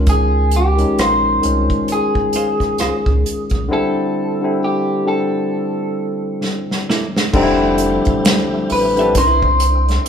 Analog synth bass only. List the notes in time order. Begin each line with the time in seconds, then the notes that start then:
Already playing: C#2
0.99 A#1
1.45 C2
2.81 C#2
3.07 C#2
3.52 B1
7.34 F1
8.71 A1
9.16 C2